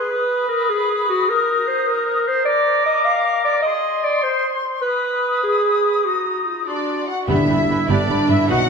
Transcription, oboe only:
0, 0, Header, 1, 2, 480
1, 0, Start_track
1, 0, Tempo, 395778
1, 124, Time_signature, 6, 3, 24, 8
1, 6364, Tempo, 405954
1, 10438, End_track
2, 0, Start_track
2, 0, Title_t, "Oboe"
2, 0, Program_c, 0, 68
2, 0, Note_on_c, 0, 68, 59
2, 126, Note_off_c, 0, 68, 0
2, 132, Note_on_c, 0, 71, 66
2, 1537, Note_off_c, 0, 71, 0
2, 1561, Note_on_c, 0, 63, 72
2, 2968, Note_off_c, 0, 63, 0
2, 3005, Note_on_c, 0, 70, 75
2, 4409, Note_off_c, 0, 70, 0
2, 4442, Note_on_c, 0, 68, 64
2, 5526, Note_off_c, 0, 68, 0
2, 5901, Note_on_c, 0, 71, 57
2, 7282, Note_off_c, 0, 71, 0
2, 7331, Note_on_c, 0, 63, 45
2, 8037, Note_on_c, 0, 62, 36
2, 8054, Note_off_c, 0, 63, 0
2, 8532, Note_off_c, 0, 62, 0
2, 8788, Note_on_c, 0, 83, 50
2, 8894, Note_off_c, 0, 83, 0
2, 9037, Note_on_c, 0, 83, 42
2, 9140, Note_off_c, 0, 83, 0
2, 9276, Note_on_c, 0, 83, 42
2, 9379, Note_off_c, 0, 83, 0
2, 9484, Note_on_c, 0, 83, 42
2, 9593, Note_off_c, 0, 83, 0
2, 9750, Note_on_c, 0, 83, 45
2, 9853, Note_off_c, 0, 83, 0
2, 9968, Note_on_c, 0, 83, 44
2, 10075, Note_off_c, 0, 83, 0
2, 10214, Note_on_c, 0, 78, 51
2, 10318, Note_off_c, 0, 78, 0
2, 10438, End_track
0, 0, End_of_file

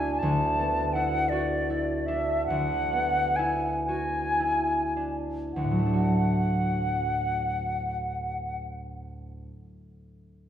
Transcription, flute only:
0, 0, Header, 1, 2, 480
1, 0, Start_track
1, 0, Tempo, 737101
1, 135, Time_signature, 6, 3, 24, 8
1, 1100, Tempo, 803213
1, 1580, Tempo, 891530
1, 2060, Tempo, 1013514
1, 2540, Tempo, 1162791
1, 3020, Tempo, 1086957
1, 5198, End_track
2, 0, Start_track
2, 0, Title_t, "Flute"
2, 0, Program_c, 0, 73
2, 0, Note_on_c, 0, 80, 48
2, 122, Note_on_c, 0, 81, 47
2, 131, Note_off_c, 0, 80, 0
2, 607, Note_on_c, 0, 78, 53
2, 616, Note_off_c, 0, 81, 0
2, 838, Note_on_c, 0, 74, 54
2, 848, Note_off_c, 0, 78, 0
2, 1321, Note_on_c, 0, 76, 47
2, 1330, Note_off_c, 0, 74, 0
2, 1558, Note_off_c, 0, 76, 0
2, 1562, Note_on_c, 0, 78, 51
2, 2047, Note_on_c, 0, 80, 47
2, 2055, Note_off_c, 0, 78, 0
2, 2275, Note_off_c, 0, 80, 0
2, 2278, Note_on_c, 0, 80, 47
2, 2765, Note_off_c, 0, 80, 0
2, 3010, Note_on_c, 0, 78, 36
2, 4374, Note_off_c, 0, 78, 0
2, 5198, End_track
0, 0, End_of_file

